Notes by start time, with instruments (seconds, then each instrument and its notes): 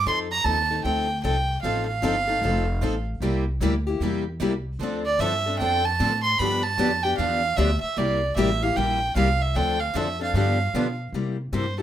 0.06 upright bass F2, steel-string acoustic guitar F3 C4 D#4 A4, violin C6
0.32 violin A#5
0.44 upright bass D#2, steel-string acoustic guitar F3 C4 D#4 A4, violin A5
0.71 steel-string acoustic guitar C4 D#4 A4
0.84 upright bass D2, steel-string acoustic guitar F3 C4 D#4 A4, violin G5
1.24 upright bass C2, steel-string acoustic guitar F3 C4 D#4 A4, violin G5
1.62 upright bass A1, steel-string acoustic guitar F3 C4 D#4 A4, violin F5
1.86 violin F5
2.02 upright bass G1, steel-string acoustic guitar F3 C4 D#4 A4
2.28 steel-string acoustic guitar C4 D#4 A4
2.41 upright bass F1, steel-string acoustic guitar F3 C4 D#4 A4
2.82 upright bass A1, steel-string acoustic guitar F3 C4 D#4 A4
3.20 upright bass C2, steel-string acoustic guitar C3 G3 A#3 E4 G4
3.60 upright bass D2, steel-string acoustic guitar C3 G3 A#3 E4 G4
3.87 steel-string acoustic guitar A#3 E4 G4
4.00 upright bass E2, steel-string acoustic guitar C3 G3 A#3 E4 G4
4.40 upright bass C2, steel-string acoustic guitar C3 G3 A#3 E4 G4
4.79 upright bass D2, steel-string acoustic guitar D3 F3
4.83 steel-string acoustic guitar C4 D4 A4
5.06 violin D5
5.19 upright bass G2, steel-string acoustic guitar D3 F3 C4 D4 A4, violin E5
5.46 steel-string acoustic guitar C4 D4 A4
5.59 upright bass F2, steel-string acoustic guitar D3 F3 C4 D4 A4, violin G5
5.85 violin A5
6.00 upright bass A2, steel-string acoustic guitar D3 F3 C4 D4 A4
6.23 violin C6
6.38 upright bass G2, steel-string acoustic guitar D3 F3 B3 D4 G4, violin B5
6.63 violin A5
6.78 upright bass F2, steel-string acoustic guitar D3 F3 B3 D4 G4
7.03 steel-string acoustic guitar B3 D4 G4, violin G5
7.18 upright bass E2, steel-string acoustic guitar D3 F3 B3 D4 G4, violin F5
7.57 upright bass D2, steel-string acoustic guitar D3 F3 B3 D4 G4, violin E5
7.81 violin E5, muted upright bass stroke
7.97 upright bass C2, steel-string acoustic guitar C3 G3 A#3 E4 G4, violin D5
8.36 upright bass A1, steel-string acoustic guitar C3 G3 A#3 E4 G4, violin E5
8.62 steel-string acoustic guitar A#3 E4 G4, violin F5
8.76 upright bass A#1, steel-string acoustic guitar C3 G3 A#3 E4 G4, violin G5
9.15 upright bass C2, steel-string acoustic guitar C3 G3 A#3 E4 G4, violin F5
9.41 violin E5
9.55 upright bass D2, steel-string acoustic guitar D3 F3 C4 D4 A4, violin G5
9.80 violin F5
9.95 upright bass F2, steel-string acoustic guitar D3 F3 C4 D4 A4, violin E5
10.20 steel-string acoustic guitar C4 D4 A4, violin F5
10.33 upright bass G2, steel-string acoustic guitar D3 F3 B3 D4 G4, violin F5
10.74 upright bass B2, steel-string acoustic guitar D3 F3 B3 D4 G4
11.12 upright bass C3, steel-string acoustic guitar C3 G3 A#3 E4 G4
11.52 upright bass G2, steel-string acoustic guitar C3 G3 A#3 E4 G4, violin C5
11.78 steel-string acoustic guitar G4